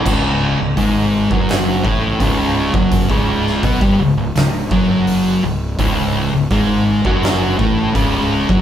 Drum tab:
CC |x---------------|----------------|----------------|
HH |----o---o---o---|o---o---o---o---|o---o---o---o---|
SD |--------o-------|---o----o-------|--------o-------|
BD |o---o--o--o-o--o|oo--oo----o-----|o---o--o--o-o--o|